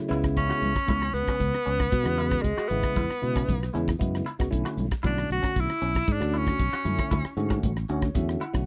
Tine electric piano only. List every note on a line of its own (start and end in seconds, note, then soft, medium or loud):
0.00 0.10 A3 medium
0.08 0.72 C#3 medium
0.08 0.72 G#3 medium
0.08 0.73 B3 medium
0.08 0.72 E4 loud
0.87 1.55 C#3 medium
0.87 1.56 G#3 medium
0.87 1.55 B3 medium
0.87 1.56 C#4 medium
2.03 2.47 C#3 medium
2.03 2.47 G#3 medium
2.03 2.47 B3 medium
2.03 2.47 F#4 medium
2.70 3.04 C#3 medium
2.70 3.04 G#3 medium
2.70 3.04 B3 medium
2.70 3.04 E4 medium
3.22 3.56 C#3 medium
3.22 3.56 G#3 medium
3.22 3.56 B3 medium
3.22 3.56 E4 medium
3.73 3.91 C#3 medium
3.73 3.91 G#3 medium
3.73 3.91 B3 medium
3.73 3.91 E4 loud
3.99 4.25 C#3 medium
3.99 4.25 G#3 medium
3.99 4.25 B3 medium
3.99 4.25 E4 medium
4.39 4.48 C#3 medium
4.39 4.48 G#3 medium
4.39 4.48 B3 medium
4.39 4.48 F#4 medium
4.51 4.85 D3 medium
4.51 4.85 A3 medium
4.51 4.85 C#4 medium
4.51 4.85 E4 medium
5.04 5.71 D3 medium
5.04 5.71 A3 medium
5.04 5.72 C#4 medium
5.04 5.71 F#4 medium
6.20 6.62 D3 medium
6.20 6.63 A3 medium
6.20 6.63 C#4 medium
6.20 6.63 F#4 medium
6.85 7.19 D3 medium
6.85 7.19 A3 medium
6.85 7.19 C#4 medium
6.85 7.19 E4 medium
7.37 7.71 D3 medium
7.37 7.71 A3 medium
7.37 7.71 C#4 medium
7.37 7.71 F#4 medium
7.89 8.07 D3 medium
7.89 8.06 A3 medium
7.89 8.07 C#4 medium
7.89 8.07 F#4 loud
7.89 8.14 C#5 medium
8.14 8.41 D3 medium
8.14 8.40 A3 medium
8.14 8.40 C#4 medium
8.14 8.41 F#4 medium
8.14 8.39 E5 medium
8.40 8.65 F#5 medium
8.53 8.63 D3 medium
8.53 8.62 A3 medium
8.53 8.63 C#4 medium
8.53 8.62 F#4 medium